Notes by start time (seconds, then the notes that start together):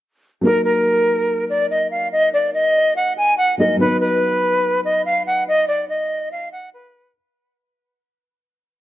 0.41 F#3 A#3 D#4 A#4
0.47 A#4
0.65 A#4
1.49 D5
1.71 D#5
1.91 F5
2.12 D#5
2.34 D5
2.54 D#5
2.96 F#5
3.18 G#5
3.38 F#5
3.58 F#3 A#3 D#4 A#4 D#5
3.77 F#3 B3 D#4 B4
3.83 B4
4.01 B4
4.85 D#5
5.06 F5
5.27 F#5
5.48 D#5
5.68 D5
5.89 D#5
6.32 F5
6.52 F#5
6.74 B4